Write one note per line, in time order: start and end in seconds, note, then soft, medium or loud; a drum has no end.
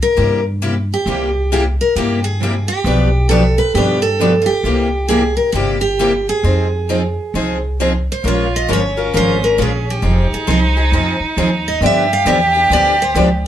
0.02 0.43 A#4 medium
0.17 0.89 G2 medium
0.17 0.39 C3 medium
0.17 0.39 G3 medium
0.17 0.39 A#3 medium
0.17 0.39 E4 medium
0.17 0.39 G4 medium
0.62 0.74 C3 medium
0.62 0.74 G3 medium
0.62 0.74 A#3 medium
0.62 0.74 E4 medium
0.62 0.74 G4 medium
0.94 1.49 G4 medium
1.06 1.78 C2 medium
1.06 1.29 C3 medium
1.06 1.29 G3 medium
1.06 1.29 A#3 medium
1.06 1.29 E4 medium
1.06 1.29 G4 medium
1.52 1.63 C3 medium
1.52 1.63 G3 medium
1.52 1.64 A#3 medium
1.52 1.64 E4 medium
1.52 1.64 G4 loud
1.52 1.61 G#4 medium
1.81 1.96 A#4 medium
1.96 2.68 G2 medium
1.96 2.19 C3 medium
1.96 2.19 G3 medium
1.96 2.19 A#3 medium
1.96 2.19 E4 medium
1.96 2.24 G4 medium
1.96 2.19 G4 medium
2.24 2.68 G#4 medium
2.43 2.54 C3 medium
2.43 2.54 G3 medium
2.43 2.54 A#3 medium
2.43 2.54 E4 medium
2.43 2.54 G4 medium
2.68 3.26 G4 medium
2.84 3.57 B1 medium
2.84 3.08 B2 medium
2.84 3.08 F3 medium
2.84 3.08 B3 medium
2.84 3.08 D4 medium
2.84 3.08 G4 medium
2.84 3.08 B4 medium
3.29 3.42 B2 medium
3.29 3.43 F3 medium
3.29 3.43 B3 medium
3.29 3.42 D4 medium
3.29 3.42 G4 medium
3.29 3.56 A4 medium
3.29 3.43 B4 medium
3.58 3.75 B4 loud
3.74 4.47 G2 medium
3.74 3.98 B2 medium
3.74 3.98 F3 medium
3.74 3.98 B3 medium
3.74 3.98 D4 medium
3.74 4.02 G4 medium
3.74 3.98 G4 medium
3.74 3.98 B4 medium
4.02 4.40 A4 medium
4.21 4.32 B2 medium
4.21 4.33 F3 medium
4.21 4.32 B3 medium
4.21 4.32 D4 medium
4.21 4.33 G4 medium
4.21 4.32 B4 medium
4.42 4.50 F4 medium
4.46 5.08 G4 medium
4.64 5.36 C2 medium
4.64 4.87 C3 medium
4.64 4.87 G3 medium
4.64 4.87 A#3 medium
4.64 4.87 E4 medium
4.64 4.88 G4 medium
5.08 5.21 C3 medium
5.08 5.22 G3 medium
5.08 5.22 A#3 medium
5.08 5.22 E4 medium
5.08 5.22 G4 loud
5.08 5.36 G#4 medium
5.37 5.52 A#4 medium
5.52 6.26 G1 medium
5.52 5.76 C3 medium
5.52 5.77 G3 medium
5.52 5.77 A#3 medium
5.52 5.77 E4 medium
5.52 5.80 G4 medium
5.52 5.77 G4 medium
5.81 6.29 G4 medium
5.99 6.11 C3 medium
5.99 6.11 G3 medium
5.99 6.12 A#3 medium
5.99 6.12 E4 medium
5.99 6.12 G4 medium
6.29 7.76 G#4 medium
6.43 7.16 F2 medium
6.43 6.66 F3 medium
6.43 6.66 C4 medium
6.43 6.66 D#4 medium
6.43 6.66 G#4 medium
6.89 7.01 F3 medium
6.89 7.01 C4 medium
6.89 7.01 D#4 medium
6.89 7.01 G#4 medium
7.34 8.06 C2 medium
7.34 7.57 F3 medium
7.34 7.57 C4 medium
7.34 7.57 D#4 medium
7.34 7.57 G#4 medium
7.80 7.91 F3 medium
7.80 7.92 C4 medium
7.80 7.92 D#4 medium
7.80 7.92 G#4 medium
8.12 8.25 C5 medium
8.24 8.68 A#1 medium
8.24 8.46 F3 medium
8.24 8.46 G#3 medium
8.24 8.46 C#4 medium
8.24 8.72 F4 medium
8.24 8.46 F4 medium
8.24 8.46 A#4 medium
8.24 8.55 C#5 medium
8.56 8.71 D#5 medium
8.68 9.12 G1 medium
8.68 8.80 F3 medium
8.68 8.80 G#3 medium
8.68 8.81 C#4 medium
8.68 10.06 C#4 medium
8.68 8.81 F4 medium
8.68 8.81 A#4 medium
8.73 9.13 C#5 medium
8.97 9.13 C#4 soft
8.97 9.13 F4 medium
8.97 9.13 A#4 medium
9.14 9.58 G#1 medium
9.14 9.35 F3 medium
9.14 9.36 G#3 medium
9.14 9.36 C#4 medium
9.14 9.36 F4 medium
9.14 9.36 A#4 medium
9.14 9.44 C5 loud
9.44 9.60 A#4 medium
9.58 10.02 A#1 medium
9.58 9.70 F3 medium
9.58 9.70 G#3 medium
9.58 9.70 C#4 medium
9.58 9.70 F4 medium
9.58 9.89 G#4 medium
9.58 9.70 A#4 medium
9.90 10.33 G4 medium
10.02 10.29 F1 medium
10.02 10.24 F3 medium
10.02 10.24 C4 medium
10.02 10.25 D#4 medium
10.02 11.83 D#4 loud
10.02 10.25 G#4 medium
10.31 10.48 G#4 medium
10.31 muted upright bass stroke soft
10.47 10.91 C2 medium
10.47 10.59 F3 medium
10.47 10.59 C4 medium
10.47 10.60 D#4 medium
10.47 10.59 G#4 medium
10.47 10.91 C5 medium
10.77 10.92 C4 soft
10.77 10.92 D#4 medium
10.77 10.93 G#4 medium
10.92 11.18 F2 medium
10.92 11.15 F3 medium
10.92 11.15 C4 medium
10.92 11.15 D#4 medium
10.92 11.15 G#4 medium
11.20 muted upright bass stroke soft
11.37 11.80 D#2 medium
11.37 11.49 F3 medium
11.37 11.49 C4 medium
11.37 11.49 D#4 medium
11.37 11.49 G#4 medium
11.68 11.84 D#5 medium
11.81 12.25 G2 medium
11.81 12.04 D3 medium
11.81 12.04 F3 medium
11.81 12.04 B3 medium
11.81 12.04 D4 medium
11.81 13.47 G4 loud
11.81 12.04 G4 medium
11.86 12.13 E5 medium
12.13 12.23 F5 loud
12.25 12.69 E2 medium
12.25 12.38 D3 medium
12.25 12.38 F3 medium
12.25 12.38 B3 medium
12.25 12.38 D4 loud
12.25 12.38 G4 medium
12.25 12.29 D#5 medium
12.25 12.73 E5 loud
12.55 12.71 B3 soft
12.55 12.71 D4 soft
12.55 12.71 G4 medium
12.70 13.14 D2 medium
12.70 12.93 D3 medium
12.70 12.93 F3 medium
12.70 12.93 B3 medium
12.70 12.93 D4 medium
12.70 12.93 G4 medium
12.70 13.01 D5 loud
13.02 13.15 C5 medium
13.14 13.47 C#2 medium
13.14 13.27 D3 medium
13.14 13.28 F3 medium
13.14 13.28 B3 medium
13.14 13.28 D4 medium
13.14 13.28 G4 medium
13.14 13.23 B4 medium